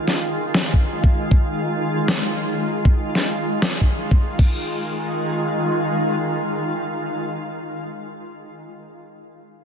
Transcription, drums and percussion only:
0.08 snare
0.54 snare
0.74 kick
1.04 kick
1.31 kick
2.08 snare
2.85 kick
3.15 snare
3.62 snare
3.81 kick
4.11 kick
4.39 kick, crash

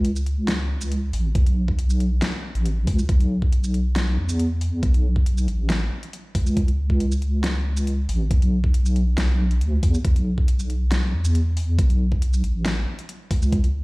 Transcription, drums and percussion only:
0.05 closed hi-hat
0.16 shaker
0.26 closed hi-hat
0.48 snare, closed hi-hat
0.81 closed hi-hat, shaker
0.92 closed hi-hat
1.13 open hi-hat
1.35 kick, closed hi-hat
1.46 closed hi-hat
1.68 kick
1.79 closed hi-hat
1.90 shaker
2.00 closed hi-hat
2.22 snare, closed hi-hat
2.55 closed hi-hat
2.66 closed hi-hat
2.87 kick, open hi-hat
2.99 shaker
3.09 kick, closed hi-hat
3.20 closed hi-hat
3.42 kick
3.52 closed hi-hat
3.64 shaker
3.74 closed hi-hat
3.96 snare, closed hi-hat
4.29 closed hi-hat, shaker
4.39 closed hi-hat
4.61 open hi-hat
4.83 kick, closed hi-hat
4.94 closed hi-hat
5.16 kick
5.26 closed hi-hat
5.38 shaker
5.48 closed hi-hat
5.70 snare, closed hi-hat
6.03 closed hi-hat
6.13 closed hi-hat
6.35 kick, open hi-hat
6.46 shaker
6.57 kick, closed hi-hat
6.68 closed hi-hat
6.90 kick
7.00 closed hi-hat
7.12 shaker
7.22 closed hi-hat
7.44 snare, closed hi-hat
7.77 closed hi-hat, shaker
7.87 closed hi-hat
8.09 open hi-hat
8.31 kick, closed hi-hat
8.42 closed hi-hat
8.64 kick
8.74 closed hi-hat
8.86 shaker
8.96 closed hi-hat
9.18 snare, closed hi-hat
9.51 closed hi-hat
9.61 closed hi-hat
9.83 kick, open hi-hat
9.94 shaker
10.05 kick, closed hi-hat
10.16 closed hi-hat
10.38 kick
10.48 closed hi-hat
10.60 shaker
10.70 closed hi-hat
10.92 snare, closed hi-hat
11.25 closed hi-hat, shaker
11.35 closed hi-hat
11.57 open hi-hat
11.79 kick, closed hi-hat
11.90 closed hi-hat
12.12 kick
12.22 closed hi-hat
12.33 shaker
12.44 closed hi-hat
12.66 snare, closed hi-hat
12.99 closed hi-hat
13.09 closed hi-hat
13.31 kick, open hi-hat
13.42 shaker
13.52 kick, closed hi-hat
13.64 closed hi-hat

